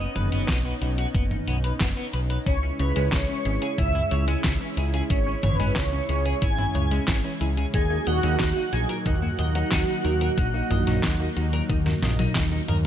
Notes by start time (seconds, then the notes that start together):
Already playing: B3 C#4 D#4 D#5 D#6
0.00 B3
0.16 F#1 B4, closed hi-hat, mid tom
0.32 F#1 B3, closed hi-hat
0.49 B1 B3, kick, snare, clap, closed hi-hat
0.65 B3
0.82 B1 B3, closed hi-hat
0.98 F#4, closed hi-hat
1.15 F#1 B3, kick, closed hi-hat
1.31 D#4, mid tom
1.48 B1 B3, closed hi-hat
1.64 B4, closed hi-hat
1.80 F#1 B3, kick, snare, clap, closed hi-hat
1.97 B3
2.13 B1 B4, closed hi-hat
2.30 B4, closed hi-hat
2.46 C#2 C#3 G#3 C#4 E4 C#5 C#6, kick, closed hi-hat
2.63 C#4
2.79 C#2 C#3 B4 C#5 B5, closed hi-hat
2.96 C#2 G#3 C#4, closed hi-hat
3.12 C#2 E3 C#4 C#5 C#6, kick, snare, clap, closed hi-hat
3.29 C#4
3.45 G#1 C#4 G#4, closed hi-hat
3.62 C#3 G#4, closed hi-hat
3.78 C#2 C#4 E4 E5 E6, kick, closed hi-hat, mid tom
3.95 C#4 E4
4.11 C#2 C#3 C#5 E5 E6, closed hi-hat
4.28 G#3 C#4, closed hi-hat
4.44 C#2 E3 C#4, kick, snare, clap, closed hi-hat
4.61 E3 C#4
4.77 C#2 E4 G#4, closed hi-hat
4.94 C#3 G#4, closed hi-hat
5.10 G#1 C#3 C#4 C#5 C#6, kick, closed hi-hat
5.27 C#4
5.43 G#1 C#3 B4 C#5 B5, closed hi-hat, mid tom
5.60 G#1 G#3 C#4, closed hi-hat
5.76 C#2 E3 C#4 C#6, kick, snare, clap, closed hi-hat
5.93 C#4
6.09 C#2 C#4 G#4, closed hi-hat
6.26 C#3 G#4, closed hi-hat
6.42 G#1 C#4 E4 G#5 G#6, kick, closed hi-hat
6.58 C#4 E4, mid tom
6.75 C#2 C#3 C#5 G#5 G#6, closed hi-hat
6.91 G#3 C#4, closed hi-hat
7.08 G#1 E3 C#4, kick, snare, clap, closed hi-hat
7.24 E3 C#4
7.41 C#2 E4 G#4, closed hi-hat
7.57 C#3 G#4, closed hi-hat
7.74 D#2 A#2 F#3 A#3 D#4 G#4 G#5, kick, closed hi-hat
7.90 A#3 D#4
8.07 D#2 A#2 F#4 D#5 F#5, closed hi-hat
8.23 D#2 F#3 D#4, closed hi-hat
8.40 D#2 D#3 D#4, kick, snare, clap, closed hi-hat
8.56 A#3 D#4
8.73 A#1 D#4 F#4 G#4 G#5, closed hi-hat
8.89 A#2 A#4, closed hi-hat
9.06 D#2 D#4 F#4 F#5, kick, closed hi-hat, mid tom
9.22 A#3 F#4
9.39 D#2 A#2 D#5, closed hi-hat
9.55 F#3 D#4, closed hi-hat
9.72 D#2 D#3 D#4, kick, snare, clap, closed hi-hat
9.88 D#3 D#4
10.05 D#2 D#4 A#4, closed hi-hat
10.21 A#2 A#4, closed hi-hat
10.38 A#1 A#2 D#4, kick, closed hi-hat
10.54 A#3 D#4
10.71 A#1 A#2 D#5, closed hi-hat, mid tom
10.87 A#1 F#3 D#4, snare, closed hi-hat
11.04 D#2 D#3 D#4, kick, snare, clap, closed hi-hat
11.20 A#3 D#4
11.36 D#2 D#4 F#4, closed hi-hat
11.53 A#2 A#4, closed hi-hat
11.69 D#2 D#4, kick, closed hi-hat, high tom
11.86 A#3 F#4, snare, mid tom
12.02 A#1 A#2 D#5, snare, closed hi-hat
12.19 F#3 D#4, closed hi-hat, mid tom
12.35 D#2 D#3 D#4, kick, snare, clap, closed hi-hat
12.52 D#3 D#4
12.68 D#2 D#4 A#4, closed hi-hat, mid tom